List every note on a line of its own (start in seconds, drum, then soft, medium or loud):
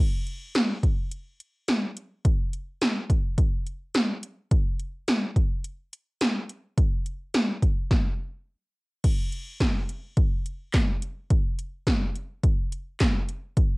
0.27 closed hi-hat medium
0.55 snare loud
0.55 closed hi-hat medium
0.83 kick medium
0.83 closed hi-hat medium
1.11 closed hi-hat medium
1.40 closed hi-hat medium
1.68 snare loud
1.68 closed hi-hat medium
1.97 closed hi-hat medium
2.25 kick loud
2.25 closed hi-hat medium
2.53 closed hi-hat medium
2.81 snare loud
2.81 closed hi-hat medium
3.10 kick medium
3.10 closed hi-hat medium
3.38 kick loud
3.38 closed hi-hat medium
3.67 closed hi-hat medium
3.94 snare loud
3.94 closed hi-hat medium
4.23 closed hi-hat medium
4.51 kick loud
4.51 closed hi-hat medium
4.80 closed hi-hat medium
5.08 snare loud
5.08 closed hi-hat medium
5.36 kick medium
5.36 closed hi-hat medium
5.64 closed hi-hat medium
5.93 closed hi-hat medium
6.21 snare loud
6.21 closed hi-hat medium
6.49 closed hi-hat medium
6.78 kick loud
6.78 closed hi-hat medium
7.06 closed hi-hat medium
7.34 snare loud
7.34 closed hi-hat medium
7.62 kick medium
7.62 closed hi-hat medium
7.91 kick loud
7.91 snare medium
9.04 kick loud
9.04 closed hi-hat medium
9.04 crash loud
9.32 closed hi-hat medium
9.60 kick loud
9.60 snare loud
9.60 closed hi-hat medium
9.89 closed hi-hat medium
10.17 kick loud
10.17 closed hi-hat medium
10.46 closed hi-hat medium
10.73 kick loud
10.73 snare loud
10.73 clap medium
10.73 closed hi-hat medium
11.02 closed hi-hat medium
11.30 kick loud
11.30 closed hi-hat medium
11.59 closed hi-hat medium
11.87 kick loud
11.87 snare loud
11.87 closed hi-hat medium
12.16 closed hi-hat medium
12.44 kick loud
12.44 closed hi-hat medium
12.72 closed hi-hat medium
13.00 kick loud
13.00 snare loud
13.00 clap medium
13.00 closed hi-hat medium
13.29 closed hi-hat medium
13.57 kick loud
13.57 closed hi-hat medium